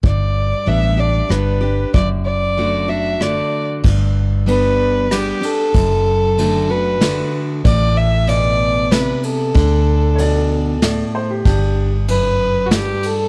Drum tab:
CC |------|------|x-----|------|
RD |------|------|--x-xx|x-x-x-|
SD |----r-|----r-|----r-|----o-|
BD |o-----|o-----|o-----|o-----|

CC |------|------|------|
RD |x-x-xx|x-x-x-|x-x-xx|
SD |----o-|----o-|----o-|
BD |o-----|o-----|o-----|